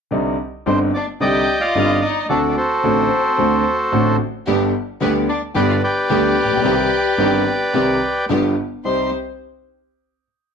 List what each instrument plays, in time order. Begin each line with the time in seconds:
0.11 grand piano C2 C3 D3 G3 C4 D#4
0.66 grand piano G1 G2 D3 G3 C4 D#4, violin C4, bandoneon C5
0.94 violin D4, bandoneon D5
1.20 grand piano C2 C3 D3 G3 C4 D#4, violin G4, bandoneon D5 D#5 G5
1.60 violin F4, bandoneon D5 F5
1.75 grand piano G1 G2 D3 G3 C4 D#4
2.01 violin D#4, bandoneon D#5
2.29 grand piano D2 D3 A3 C4 F#4, violin D4, bandoneon F#4 A4 D5
2.49 violin D4, bandoneon D5
2.57 violin C4, bandoneon F#4 A4 C5
2.83 grand piano A1 A2 D3 A3 C4 F#4
3.38 grand piano D2 D3 A3 C4 F#4
3.92 grand piano A1 A2 D3 A3 C4 F#4
4.47 grand piano G1 G2 D3 G3 B3 G4, string section B3 D4 G4
5.01 grand piano D2 D3 G3 B3 G4, string section B3 D4 G4, violin B3, bandoneon B4
5.29 violin D4, bandoneon D5
5.55 grand piano G1 G2 D3 G3 B3 G4, string section B3 D4 G4, violin G4, bandoneon B4 D5 G5
5.69 violin F4, bandoneon F5
5.82 violin G4, bandoneon B4 D5 G5
6.09 grand piano D2 D3 G3 B3 G4, string section B3 D4 G4
6.43 grand piano A1
6.51 grand piano A#1
6.56 grand piano B1
6.63 grand piano C2 C3 D#3 G3 C4 G4, string section C4 D#4 G4
7.18 grand piano G1 G2 D#3 G3 C4 G4, string section C4 D#4 G4
7.73 grand piano C2 C3 D#3 G3 C4 G4, string section C4 D#4 G4
8.29 grand piano G1 G2 D3 G3 B3 F4, string section B3 F4 G4
8.84 grand piano C2 G3 C4 D#4, string section C4 D#4 G4, violin C5, bandoneon C6